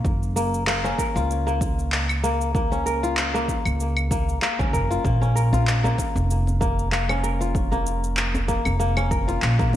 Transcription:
0.00 0.36 A#3 medium
0.00 0.71 C#4 medium
0.00 0.80 F4 medium
0.00 0.38 A#4 medium
0.05 0.90 F#1 medium
0.05 kick loud
0.05 shaker soft
0.23 shaker soft
0.36 0.67 A#3 medium
0.36 shaker medium
0.54 shaker soft
0.67 1.46 A#3 medium
0.67 clap loud
0.67 shaker soft
0.84 2.58 C#4 medium
0.84 shaker soft
0.98 2.26 A#4 medium
0.98 kick medium
0.98 shaker medium
1.15 3.56 C#2 medium
1.15 2.67 F4 medium
1.15 shaker soft
1.31 shaker soft
1.47 2.23 A#3 medium
1.47 shaker soft
1.61 kick loud
1.61 shaker medium
1.79 shaker soft
1.92 clap loud
1.92 shaker soft
2.09 claves medium
2.09 shaker soft
2.23 2.54 A#3 medium
2.23 shaker medium
2.41 shaker soft
2.55 3.34 A#3 medium
2.55 kick loud
2.55 shaker soft
2.72 4.46 C#4 medium
2.72 shaker soft
2.86 4.13 A#4 medium
2.86 shaker medium
3.03 4.54 F4 medium
3.03 shaker soft
3.17 clap loud
3.17 shaker soft
3.34 4.10 A#3 medium
3.34 shaker soft
3.48 kick medium
3.48 shaker medium
3.65 4.34 C#2 medium
3.65 claves medium
3.65 shaker soft
3.80 shaker soft
3.97 claves medium
3.97 shaker soft
4.11 4.42 A#3 medium
4.11 kick loud
4.11 shaker medium
4.29 shaker soft
4.42 5.04 A#3 medium
4.42 clap medium
4.42 shaker soft
4.59 4.75 C#2 medium
4.59 5.21 C#4 medium
4.59 kick loud
4.59 shaker soft
4.73 4.94 F#1 medium
4.73 5.35 A#4 medium
4.73 kick medium
4.73 shaker medium
4.91 5.52 F4 medium
4.91 shaker soft
5.04 5.90 A#1 medium
5.04 5.84 A#3 medium
5.04 kick loud
5.04 shaker soft
5.21 6.95 C#4 medium
5.21 djembe tone medium
5.21 shaker soft
5.35 6.63 A#4 medium
5.35 shaker medium
5.53 7.04 F4 medium
5.53 djembe bass medium
5.53 shaker soft
5.67 clap loud
5.67 shaker soft
5.84 6.60 A#3 medium
5.84 djembe tone medium
5.84 shaker soft
5.98 kick medium
5.98 djembe slap medium
5.98 shaker medium
6.15 8.56 F1 loud
6.15 djembe tone medium
6.15 shaker soft
6.31 shaker soft
6.47 djembe tone medium
6.47 shaker soft
6.61 6.92 A#3 medium
6.61 kick loud
6.61 shaker medium
6.79 shaker soft
6.92 7.71 A#3 medium
6.92 clap medium
6.92 shaker soft
7.09 8.83 C#4 medium
7.09 claves medium
7.09 shaker soft
7.23 8.51 A#4 medium
7.23 shaker medium
7.41 8.92 F4 medium
7.41 shaker soft
7.55 kick loud
7.55 shaker soft
7.72 8.48 A#3 medium
7.72 djembe tone medium
7.72 shaker soft
7.87 shaker medium
8.04 shaker soft
8.17 clap medium
8.17 shaker soft
8.35 djembe tone medium
8.35 shaker soft
8.48 8.79 A#3 medium
8.48 kick medium
8.48 djembe slap medium
8.48 shaker medium
8.65 9.34 F1 medium
8.65 djembe tone medium
8.65 claves medium
8.65 shaker soft
8.79 9.59 A#3 medium
8.79 shaker soft
8.97 9.76 C#4 medium
8.97 claves medium
8.97 shaker soft
9.11 9.76 A#4 medium
9.11 kick loud
9.11 shaker medium
9.28 9.76 F4 medium
9.28 djembe slap medium
9.28 shaker soft
9.42 9.76 A#1 medium
9.42 clap medium
9.42 shaker soft
9.59 9.76 A#3 medium
9.59 kick loud
9.59 djembe slap medium
9.59 shaker soft
9.73 djembe tone medium

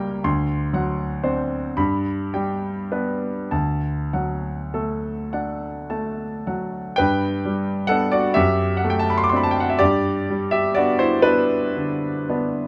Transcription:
0.00 0.21 C#2 medium
0.00 0.24 G3 soft
0.00 0.27 A#3 medium
0.00 0.27 A#4 medium
0.00 0.27 G5 medium
0.00 0.27 A#5 medium
0.24 1.74 D2 medium
0.24 1.04 C6 medium
0.73 1.56 F#3 soft
0.73 1.56 F#5 soft
1.24 1.73 C4 soft
1.24 1.74 D4 soft
1.24 1.77 C5 soft
1.77 3.47 G2 medium
1.77 2.68 B5 medium
2.34 3.27 G3 soft
2.34 3.27 G5 soft
2.92 3.48 B3 soft
2.92 3.48 D4 soft
2.92 3.52 B4 soft
3.51 6.94 D2 soft
3.51 4.50 A5 soft
4.13 5.10 F#3 soft
4.13 5.09 F#5 soft
4.74 5.67 A3 soft
4.74 5.66 A4 soft
5.33 6.24 D4 soft
5.33 6.24 F#5 soft
5.90 6.79 A3 soft
5.90 6.79 A5 soft
6.47 6.98 F#3 soft
6.47 6.98 F#5 soft
6.96 8.34 G2 medium
6.96 7.87 B4 medium
6.96 7.90 G5 medium
7.45 8.19 G3 soft
7.87 8.33 B3 soft
7.87 8.33 D4 soft
7.87 8.11 A4 medium
7.87 8.12 F#5 medium
8.12 8.35 F#4 medium
8.12 8.36 D5 medium
8.34 9.76 F#2 medium
8.34 8.75 G4 medium
8.34 8.78 E5 medium
8.77 8.91 F#5 medium
8.84 9.61 A3 soft
8.90 9.02 G5 medium
8.99 9.10 A5 medium
9.10 9.18 B5 medium
9.18 9.25 C6 medium
9.24 9.31 D6 medium
9.30 9.76 C4 soft
9.30 9.77 D4 soft
9.30 9.38 C6 medium
9.37 9.45 B5 medium
9.43 9.52 A5 medium
9.51 9.61 G5 medium
9.60 9.70 F#5 medium
9.70 9.79 E5 medium
9.79 12.67 G2 medium
9.79 10.49 G4 medium
9.79 10.52 D5 medium
10.30 11.07 G3 soft
10.51 10.75 G4 medium
10.51 10.76 E5 medium
10.75 11.21 B3 soft
10.75 11.22 D4 soft
10.75 10.99 F#4 medium
10.75 11.00 D5 medium
10.99 11.23 E4 medium
10.99 11.24 C5 medium
11.22 11.72 B3 soft
11.22 12.28 D4 medium
11.22 12.67 B4 medium
11.77 12.62 D3 soft
12.29 12.67 B3 soft
12.29 12.67 D4 soft

